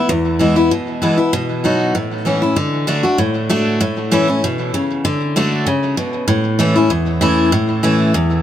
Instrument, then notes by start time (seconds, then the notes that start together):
steel-string acoustic guitar
0.09 E2
0.39 E3 G#3 B3 E4
0.56 B3 E4
0.71 B2
1.02 E3 G#3 B3 E4
1.17 B3 E4
1.33 B2
1.64 F#3 B3 D#4 F#4
1.95 A2
2.25 E3 A3 C#4 E4
2.42 C#4 E4
2.56 D3
2.87 D3 A3 D4 F#4
3.03 D4 F#4
3.18 A2
3.49 D3 A3 D4 F#4
3.81 A2
4.11 E3 A3 C#4 E4
4.28 C#4 E4
4.44 B2
4.74 C#3
5.05 D3
5.36 D3 A3 D4 F#4
5.67 C#3
5.97 B2
6.28 A2
6.59 E3 A3 C#4 E4
6.76 C#4 E4
6.90 E2
7.21 E3 A3 C#4 E4
7.52 A2
7.83 E3 A3 C#4 E4
8.14 E2